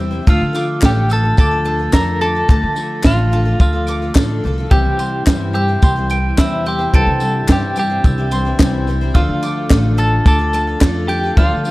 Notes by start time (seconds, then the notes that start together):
Already playing: E2 C3 E3 G3 E4 C6 E6
0.00 C4 E4 C5
0.11 G3 C4 E4 C5
0.27 D2 D3 F3 A3 D4 F4 A4 E6 F6, kick
0.41 D3
0.53 A3 D4 F4 A4 D6, tambourine
0.81 A1 D3 A3 D4 F4 A4 G6, kick, snare, clap, tambourine
0.85 G4
1.09 A3 D4 F4 A4 E6 A6, tambourine
1.23 D4 F4 A4
1.37 D2 A4 D6 A6, kick, tambourine
1.51 D4 F4 A4
1.64 A3 D4 F4 A4 A5
1.79 D4 F4 A4
1.92 F2 D3 A3 D4 F4 A4 A#4 E6 A#6, kick, snare, clap, tambourine
2.21 A3 D4 F4 A4 D6 A6, tambourine
2.35 D4 F4 A4
2.48 D2 D3 A3 D4 F4 A4 A5, kick, tambourine
2.63 D3
2.75 A3 D4 F4 A4, tambourine
3.03 A1 D3 A3 D4 F4 A4 F6, kick, snare, clap, tambourine
3.32 A3 D4 F4 A4 A5
3.45 D4 F4 A4
3.60 D2 F4 F6, kick, tambourine
3.73 D4 F4 A4
3.87 A3 D4 F4 A4 D6, tambourine
4.02 D4 F4 A4
4.15 A1 D3 A3 D4 F4 A4, kick, snare, clap, tambourine
4.44 C2 A3 D4 F4 A4
4.58 D4 F4 A4
4.70 C2 C3 E3 G3 C4 E4 G4 C5 E5 E6 G6, kick
4.86 C3
4.99 G3 C4 E4 C5 C6, tambourine
5.26 G2 C3 E3 G3 C4 E4 C5, kick, snare, clap, tambourine
5.53 G3 C4 E4 G4 C5 E6 G6
5.68 G3 C4 E4 C5
5.82 C2 C6, kick, tambourine
5.96 G3 C4 E4 C5
6.10 G3 C4 E4 C5 G5, tambourine
6.38 E2 C3 E3 G3 C4 E4 C5 E6, kick, snare, clap, tambourine
6.66 G3 C4 E4 G4 C6 G6, tambourine
6.70 C5
6.79 G3 C4 E4 C5
6.92 C2 C3 E3 G3 C4 D4 E4 A4 C5 E5 G5 A6, kick
7.07 C3
7.20 G3 C4 E4 C5 E6, tambourine
7.48 G2 C3 E3 G3 C4 E4 C5 G6, kick, snare, clap, tambourine
7.52 G4
7.76 G3 C4 E4 G4 C5 G5 G6, tambourine
7.90 G3 C4 E4 C5
8.04 C2 E6, kick, tambourine
8.18 G3 C4 E4 C5
8.31 G3 C4 E4 C5 C6, tambourine
8.45 G3 C4 E4 C5
8.59 C2 C3 E3 G3 C4 E4 C5 G5, kick, snare, clap, tambourine
8.87 G3 C4 E4 C5, tambourine
9.01 G3 C4 E4 C5
9.14 D2 D3 F3 A3 D4 F4 A4 D5 E6 F6, kick
9.28 D3
9.43 A3 D4 F4 A4 D6, tambourine
9.70 A1 D3 A3 D4 F4 A4, kick, snare, clap, tambourine
9.97 A3 D4 F4 A4 E6 A6, tambourine
10.26 D2 A4 D6 A6, kick, tambourine
10.39 D4 F4 A4
10.53 A3 D4 F4 A4 A5, tambourine
10.67 D4 F4 A4
10.81 F2 D3 A3 D4 F4 A4, kick, snare, clap, tambourine
11.08 A3 D4 F4 G4 A4 D6 G6, tambourine
11.23 D4 F4 A4
11.37 D2 D3 F3 G3 A3 D4 F4 A4 D5 A5 F6, kick
11.53 D3
11.64 A3 D4 F4, tambourine